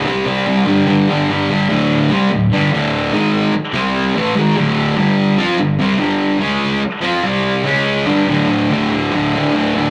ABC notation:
X:1
M:4/4
L:1/8
Q:1/4=146
K:G
V:1 name="Distorted electric guitar" clef=bass
[C,G,C] [C,G,C] [C,G,C] [G,,D,G,] [G,,D,G,] [G,,D,G,] [G,,D,G,] [G,,D,G,] | [D,,A,,D,]2 [C,G,C] [D,,A,,] [G,,D,G,] [D,,A,,D,]2 [^G,,^D,^G,]- | [^G,,^D,^G,] z [C,=G,C]2 [A,,E,A,] [^G,,_E,^G,] [=D,,A,,=D,]2 | [G,,D,G,]2 [=F,C=F] [G,,D,] [C,G,C] [G,,D,G,]2 [^C,^G,^C]- |
[^C,^G,^C] z [=F,=C=F] [=C,=G,C]2 [^C,^G,^C]2 [=G,,D,=G,] | [D,,A,,D,] [A,,D,] [D,,A,,D,] [A,,D,] [D,,A,,D,] [D,,A,,D,] [D,,A,,D,] [A,,D,] |]